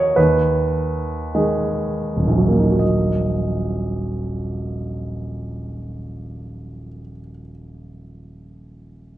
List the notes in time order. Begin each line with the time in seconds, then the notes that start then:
Already playing: D#2 D#3 A#3 F#4 A#4 C#5 D#5 F#5
0.16 D#2 B4
1.35 D#3 G#3 G#4
2.16 D#1
2.27 A#1
2.38 F#3
2.48 A#3
2.59 D#4
2.69 F#4
2.79 D#5